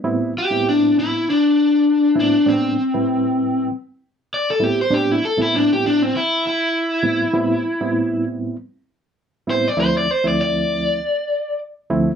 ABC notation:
X:1
M:4/4
L:1/16
Q:"Swing 16ths" 1/4=98
K:Am
V:1 name="Overdriven electric guitar"
z2 G2 D2 E2 D6 D2 | C8 z4 d A G c | G E A E D G D C E2 E6- | E6 z8 c d |
c d c d d8 z4 |]
V:2 name="Reed electric piano"
[A,,G,B,CE]2 z [A,,G,B,CE]4- [A,,G,B,CE] z6 [A,,G,B,CE] z | [A,,G,B,CD]2 z [A,,G,CEB]4- [A,,G,CEB] z6 [A,,G,B,CE] z | [A,,G,B,CD]2 z [A,,G,B,CE]4- [A,,G,B,CE] z6 [A,,G,B,CE] z | [A,,G,B,CE]2 z [A,,G,B,CE]4- [A,,G,B,CE] z6 [A,,G,B,CE] z |
[D,,F,A,CE]2 z [D,,F,A,CE]4- [D,,F,A,CE] z6 [D,,F,A,CE] z |]